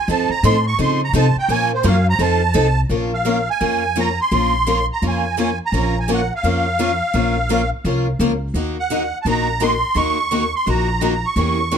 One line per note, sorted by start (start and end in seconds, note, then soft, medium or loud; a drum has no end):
0.08 0.28 F2 medium
0.08 0.30 F3 medium
0.08 0.30 C4 medium
0.08 0.30 D#4 medium
0.08 0.30 A4 medium
0.08 0.30 A5 medium
0.29 0.44 A#5 loud
0.29 muted upright bass stroke soft
0.43 0.78 A2 loud
0.43 0.55 F3 medium
0.43 0.55 C4 loud
0.43 0.55 D#4 medium
0.43 0.55 A4 medium
0.43 0.65 C6 loud
0.67 0.80 C#6 loud
0.79 1.13 C#3 medium
0.79 1.00 F3 medium
0.79 1.00 C4 medium
0.79 1.00 D#4 medium
0.79 1.00 A4 medium
0.79 1.01 C6 medium
1.04 1.16 A#5 medium
1.13 1.34 C3 loud
1.13 1.25 F3 medium
1.13 1.25 C4 medium
1.13 1.26 D#4 loud
1.13 1.25 A4 loud
1.13 1.37 A5 medium
1.36 1.51 G5 medium
1.36 muted upright bass stroke soft
1.48 1.83 A#2 medium
1.48 1.70 F3 medium
1.48 1.70 A#3 medium
1.48 1.70 C#4 medium
1.48 1.71 F4 medium
1.48 1.71 A#4 medium
1.48 1.72 G#5 loud
1.74 1.86 C5 medium
1.83 2.18 F#2 loud
1.83 1.95 F3 medium
1.83 1.95 A#3 medium
1.83 1.95 C#4 medium
1.83 1.95 F4 loud
1.83 1.96 A#4 loud
1.83 2.07 F5 medium
2.10 2.21 A#5 loud
2.19 2.54 F2 loud
2.19 2.41 F3 medium
2.19 2.41 C4 medium
2.19 2.41 D#4 medium
2.19 2.41 A4 medium
2.19 2.81 A5 medium
2.54 2.89 C2 loud
2.54 2.66 F3 medium
2.54 2.66 C4 loud
2.54 2.66 D#4 loud
2.54 2.66 A4 loud
2.89 3.46 A#1 medium
2.89 3.11 F3 medium
2.89 3.12 A#3 medium
2.89 3.12 C#4 medium
2.89 3.12 F4 medium
2.89 3.12 A#4 medium
3.14 3.49 F5 medium
3.25 3.36 F3 medium
3.25 3.37 A#3 medium
3.25 3.37 C#4 medium
3.25 3.37 F4 medium
3.25 3.37 A#4 medium
3.50 3.99 G#5 loud
3.61 4.18 F2 medium
3.61 3.82 F3 medium
3.61 3.82 A#3 medium
3.61 3.82 C#4 medium
3.61 3.82 F4 medium
3.61 3.82 A#4 medium
3.95 4.07 F3 medium
3.95 4.07 A#3 medium
3.95 4.08 C#4 medium
3.95 4.08 F4 medium
3.95 4.08 A#4 medium
4.00 4.20 A#5 loud
4.21 4.86 C6 loud
4.31 4.88 A#1 medium
4.31 4.52 F3 medium
4.31 4.53 A#3 medium
4.31 4.53 C#4 medium
4.31 4.53 F4 medium
4.31 4.53 A#4 medium
4.67 4.78 F3 medium
4.67 4.78 A#3 medium
4.67 4.78 C#4 medium
4.67 4.78 F4 medium
4.67 4.79 A#4 medium
4.92 5.05 A#5 medium
5.02 5.59 F2 medium
5.02 5.23 F3 medium
5.02 5.23 A#3 medium
5.02 5.23 C#4 medium
5.02 5.24 F4 medium
5.02 5.24 A#4 medium
5.08 5.59 G#5 medium
5.37 5.49 F3 medium
5.37 5.49 A#3 medium
5.37 5.49 C#4 medium
5.37 5.49 F4 medium
5.37 5.49 A#4 medium
5.66 5.99 A#5 medium
5.72 6.29 A#1 medium
5.72 5.94 F3 medium
5.72 5.94 A#3 medium
5.72 5.95 C#4 medium
5.72 5.94 F4 medium
5.72 5.95 A#4 medium
6.00 6.10 G#5 medium
6.08 6.19 F3 medium
6.08 6.19 A#3 medium
6.08 6.20 C#4 medium
6.08 6.20 F4 medium
6.08 6.20 A#4 medium
6.14 6.33 F#5 medium
6.35 7.70 F5 medium
6.43 7.00 F2 medium
6.43 6.65 F3 medium
6.43 6.65 A#3 medium
6.43 6.65 C#4 medium
6.43 6.65 F4 medium
6.43 6.65 A#4 medium
6.79 6.90 F3 medium
6.79 6.90 A#3 medium
6.79 6.90 C#4 medium
6.79 6.90 F4 medium
6.79 6.90 A#4 medium
7.13 7.71 A#1 medium
7.13 7.35 F3 medium
7.13 7.35 A#3 medium
7.13 7.35 C#4 medium
7.13 7.35 F4 medium
7.13 7.35 A#4 medium
7.49 7.61 F3 medium
7.49 7.60 A#3 medium
7.49 7.61 C#4 medium
7.49 7.61 F4 medium
7.49 7.61 A#4 medium
7.84 8.15 C2 medium
7.84 8.06 F3 medium
7.84 8.06 A#3 medium
7.84 8.06 C#4 medium
7.84 8.06 F4 medium
7.84 8.06 A#4 medium
8.19 8.50 C#2 medium
8.19 8.31 F3 medium
8.19 8.32 A#3 medium
8.19 8.32 C#4 medium
8.19 8.31 F4 medium
8.19 8.32 A#4 medium
8.54 9.11 D#2 medium
8.54 8.76 D#3 medium
8.54 8.76 A#3 medium
8.54 8.76 D#4 medium
8.54 8.76 F#4 medium
8.54 8.76 A#4 medium
8.79 9.19 F#5 medium
8.90 9.01 D#3 medium
8.90 9.01 A#3 medium
8.90 9.02 D#4 medium
8.90 9.02 F#4 medium
8.90 9.02 A#4 medium
9.22 9.82 A#1 medium
9.22 9.47 D#3 medium
9.22 9.47 A#3 medium
9.22 9.27 A5 medium
9.26 9.47 D#4 medium
9.26 9.47 F#4 medium
9.26 9.47 A#4 medium
9.26 9.63 A#5 loud
9.60 9.72 D#3 medium
9.60 9.72 A#3 medium
9.60 9.72 D#4 medium
9.60 9.72 F#4 medium
9.60 9.72 A#4 medium
9.60 9.98 C6 loud
9.95 10.52 D#2 medium
9.95 10.16 D#3 medium
9.95 10.17 A#3 medium
9.95 10.17 D#4 medium
9.95 10.17 F#4 medium
9.95 10.17 A#4 medium
9.95 10.55 C#6 loud
10.31 10.42 D#3 medium
10.31 10.43 A#3 medium
10.31 10.43 D#4 medium
10.31 10.43 F#4 medium
10.31 10.43 A#4 medium
10.56 10.69 C6 medium
10.67 11.23 A#1 medium
10.67 10.88 D#3 medium
10.67 10.88 A#3 medium
10.67 10.88 D#4 medium
10.67 10.88 F#4 medium
10.67 10.88 A#4 medium
10.67 11.27 A#5 medium
11.01 11.13 D#3 medium
11.01 11.13 A#3 medium
11.01 11.13 D#4 medium
11.01 11.13 F#4 medium
11.01 11.13 A#4 medium
11.25 11.75 C#6 loud
11.36 11.78 E2 medium
11.36 11.58 E3 medium
11.36 11.57 G3 medium
11.36 11.58 A#3 medium
11.36 11.58 C#4 medium
11.36 11.58 E4 medium
11.36 11.59 G4 medium
11.36 11.58 A#4 medium
11.71 11.78 E3 medium
11.71 11.78 G3 medium
11.71 11.78 A#3 medium
11.71 11.78 C#4 medium
11.71 11.78 E4 medium
11.71 11.78 G4 medium
11.71 11.78 A#4 medium